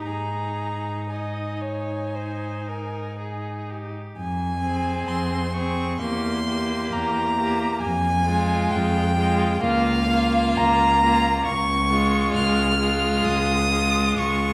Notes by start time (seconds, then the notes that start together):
0.05 G#2 D#4 G#4 A#5
1.09 D#5 G#5
1.62 C#5
2.15 C5
2.68 A#4
3.19 G#4
3.69 G4
4.17 F2 G#5
4.63 C4 G#4
5.08 F2 C6
5.53 C4 G#4 C#6
6.00 E2 A#3 G4 C6
6.47 A#3 G4
6.92 E2 A#5
7.38 A#3 G4
7.81 F2 G#5
8.26 G#3 F4
8.71 F2 G5
9.16 G#3 F4
9.61 C#2 A#3 F4 F5
10.09 A#3 F4
10.57 C#2 A#5
11.03 A#3 F4
11.46 C#2 C#6
11.90 G#3 F4
12.35 C#2 F6
12.79 G#3 F4
13.25 C#2 D#6
13.70 G#3 F4
14.17 C#2 C#6